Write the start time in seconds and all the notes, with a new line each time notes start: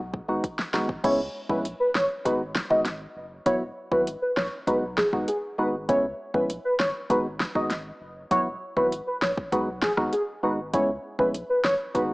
Already playing: B1
0.13 kick
0.28 G#1 G#3 B3 D#4 F#4
0.43 kick, closed hi-hat
0.59 snare
0.73 G#1 G#3 B3 D#4 F#4, snare
0.89 kick
1.04 C#2 G#3 B3 C#4 E4 C#5, kick, closed hi-hat, crash
1.49 A#1 G#3 B3 C#4 E4 B4, kick
1.65 closed hi-hat
1.80 B4
1.95 G#1 C#5, snare
2.25 G#1 G#3 B3 D#4 F#4 B4, kick, closed hi-hat
2.56 snare
2.70 G#1 G#3 B3 D#4 F#4 D#5, kick
2.86 snare, closed hi-hat
3.16 F#1
3.46 E1 F#3 B3 E4 F#4 C#5, kick, closed hi-hat
3.92 G#1 F#3 B3 E4 F#4 B4, kick
4.07 closed hi-hat
4.22 B4
4.37 A#1 C#5, snare
4.67 B1 G#3 B3 D#4 F#4 B4, kick, closed hi-hat
4.98 G#4, kick, snare
5.13 G#1 G#3 B3 D#4 F#4, kick
5.28 G#4, closed hi-hat
5.58 G#1 G#3 B3 D#4 F#4 B4
5.89 C#2 G#3 B3 C#4 E4 C#5, kick, closed hi-hat
6.34 A#1 G#3 B3 C#4 E4 B4, kick
6.50 closed hi-hat
6.65 B4
6.80 G#1 C#5, snare
7.10 G#1 G#3 B3 D#4 F#4 B4, kick, closed hi-hat
7.40 snare
7.55 G#1 G#3 B3 D#4 F#4 D#5, kick
7.71 snare, closed hi-hat
8.01 F#1
8.31 E1 F#3 B3 E4 F#4 C#5, kick, closed hi-hat
8.76 G#1 F#3 B3 E4 F#4 B4, kick
8.92 closed hi-hat
9.07 B4
9.22 A#1 C#5, snare
9.38 kick
9.52 B1 G#3 B3 D#4 F#4 B4, kick, closed hi-hat
9.83 G#4, kick, snare
9.98 G#1 G#3 B3 D#4 F#4, kick, cross-stick
10.13 G#4, closed hi-hat
10.43 G#1 G#3 B3 D#4 F#4 B4
10.73 C#2 G#3 B3 C#4 E4 C#5, kick, closed hi-hat
11.19 A#1 G#3 B3 C#4 E4 B4, kick
11.35 closed hi-hat
11.50 B4
11.64 G#1 C#5, snare
11.95 G#1 G#3 B3 D#4 F#4 B4, kick, closed hi-hat